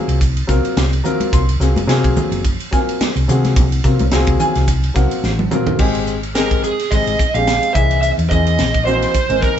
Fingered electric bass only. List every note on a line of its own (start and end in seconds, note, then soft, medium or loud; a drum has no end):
0.08 0.41 C2 medium
0.49 0.62 C2 medium
0.77 1.00 C2 loud
1.33 1.56 C2 loud
1.60 1.73 C2 medium
1.75 1.86 F#1 medium
1.87 2.06 C3 medium
2.05 2.15 C2 medium
2.31 2.55 F#1 medium
3.16 3.26 C2 medium
3.28 3.58 C3 medium
3.57 3.79 C2 loud
3.84 3.97 C3 medium
3.99 4.10 C2 medium
4.12 4.25 C2 loud
4.27 4.38 C2 medium
4.56 4.89 C2 loud
4.95 5.08 C2 medium
5.11 muted fingered electric bass stroke soft
5.24 5.46 A1 medium
5.79 6.70 G#1 medium
6.92 7.04 G#1 medium
7.07 7.17 G#1 medium
7.34 7.57 A#1 medium
7.75 8.10 C2 medium
8.18 8.28 E2 medium
8.31 8.60 E2 medium
8.59 9.04 A#1 medium
9.15 muted fingered electric bass stroke soft
9.29 9.40 G#1 medium
9.42 muted fingered electric bass stroke soft